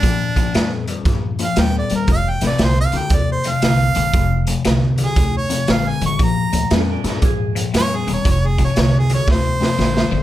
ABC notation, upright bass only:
X:1
M:4/4
L:1/8
Q:"Swing" 1/4=117
K:Bbmix
V:1 name="Upright bass" clef=bass
B,,,2 F,,2 G,,2 E,, E,, | F,,, =A,,, C,, D,, E,,2 C,, B,,, | F,,,2 C,,2 D,,2 B,,, =A,,, | B,,, D,, F,, G,, A,,2 F,, =E,,, |
F,,,2 C,,2 D,,2 B,,, =A,,, |]